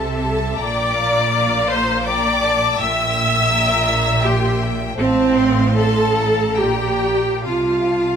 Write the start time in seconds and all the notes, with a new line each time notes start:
Already playing: C2 C3 A4 E5 A5
0.17 A5
0.56 A#1 A#2 D5 G5 A#5 D6
0.95 F5
1.31 F5
1.69 C5 C6
2.04 D5 G5 A#5 D6
2.41 A5
2.78 A#1 A#2 E5 G5 E6
3.51 G5 A#5
3.88 D5
4.23 G4 E5 G5 C6
4.63 G5
4.96 A1 A2 C4 C5 F5 A5
5.37 C6
5.76 A4 A5 C6
6.18 A#5
6.56 A#1 A#2 G4 D5 G5
7.45 C2 C3 F4 F5 A5